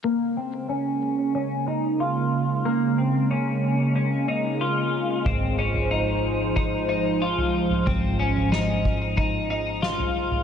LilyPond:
<<
  \new Staff \with { instrumentName = "Clean electric guitar" } { \time 4/4 \key bes \minor \tempo 4 = 92 bes8 c'8 des'4 des'8 ees'8 f'4 | bes8 c'8 des'4 des'8 ees'8 f'4 | c'8 des'8 ees'4 ees'8 ees'8 f'4 | c'8 des'8 ees'4 ees'8 ees'8 f'4 | }
  \new Staff \with { instrumentName = "Analog synth pad" } { \clef bass \time 4/4 \key bes \minor << { <des bes>1~ | <des bes>1 | <f c''>1~ | <f c''>1 | } \\ { aes1~ | aes1~ | aes1~ | aes1 | } >> }
  \new Staff \with { instrumentName = "Fingered electric bass" } { \clef bass \time 4/4 \key bes \minor r1 | r1 | aes,,1 | aes,,1 | }
  \new DrumStaff \with { instrumentName = "Drums" } \drummode { \time 4/4 r4 r4 r4 r4 | r4 r4 r4 r4 | <bd tomfh>8. tomfh16 r4 bd4 r16 tomfh8 tomfh16 | <bd tomfh>8. tomfh16 sn8 bd8 bd4 sn16 tomfh8 tomfh16 | }
>>